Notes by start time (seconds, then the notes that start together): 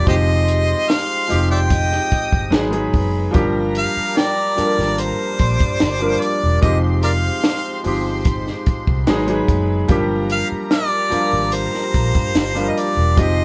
Already playing: G4
0.05 F1 F3 G#3 C4 D#4 G4 C5 D#5 C6, kick, closed hi-hat
0.48 closed hi-hat
0.89 F5, snare, closed hi-hat
1.28 F3 G#3 C4 D#4 G4 D#5, closed hi-hat
1.32 F1
1.51 D5 E5 G5
1.70 D#5 D#6, kick, closed hi-hat
1.92 snare
2.12 muted fingered electric bass stroke, kick, closed hi-hat
2.33 G1, kick
2.50 G#1 F#3 G#3 B3 D#4 F#4 G#4 B4 B5, snare, closed hi-hat
2.71 F#3 G#3 B3 D#4 G#4, closed hi-hat
2.93 F#1, kick, open hi-hat
3.31 F3 G3 A#3 D4 F4 G4 A#4, kick, closed hi-hat
3.35 G1 A#5
3.75 F5, closed hi-hat
3.97 muted fingered electric bass stroke
4.17 D5 G5, snare, closed hi-hat
4.56 F3 G3 A#3 D4 A4, muted fingered electric bass stroke, closed hi-hat
4.65 A#4
4.79 G#1, snare
4.98 C5, closed hi-hat
5.39 A#1 D5 C6 D6, kick, closed hi-hat
5.59 G2, kick, closed hi-hat
5.80 G1, snare, closed hi-hat
5.99 F3 G3 A#3 D4 A#4
6.21 D5, closed hi-hat
6.43 E1
6.61 F1 F3 G#3 C4 D#4 G4 C5 D#5 C6 D6, kick, closed hi-hat
7.03 A#4 D5 F5, closed hi-hat
7.44 snare, closed hi-hat
7.84 G1 F3 G#3 C4 D#4 G4, open hi-hat
8.25 kick, closed hi-hat
8.47 snare
8.66 muted fingered electric bass stroke, kick, closed hi-hat
8.87 C2, kick
9.07 G#1 F#3 G#3 B3 D#4 F#4 G#4 B4 B5, snare, closed hi-hat
9.27 F#3 G#3 B3 D#4 G#4, closed hi-hat
9.48 F#1, kick, closed hi-hat
9.88 G1 F3 G3 A#3 D4 F4 G4 A#4 A#5, kick, closed hi-hat
10.30 F5, closed hi-hat
10.52 muted fingered electric bass stroke
10.71 D5 F6, snare, closed hi-hat
11.10 F3 G3 A#3 D4 F4, muted fingered electric bass stroke, closed hi-hat
11.33 G#1
11.52 C5, closed hi-hat
11.74 snare
11.94 A#1, kick, closed hi-hat
12.15 G2, kick, closed hi-hat
12.35 G1, snare, closed hi-hat
12.54 F3 G3 A#3 D4 F4, closed hi-hat
12.70 D#5
12.77 D5, closed hi-hat
12.97 E1
13.16 F1 F3 G#3 C4 D#4 G4 C5 C6, kick, closed hi-hat
13.20 D#5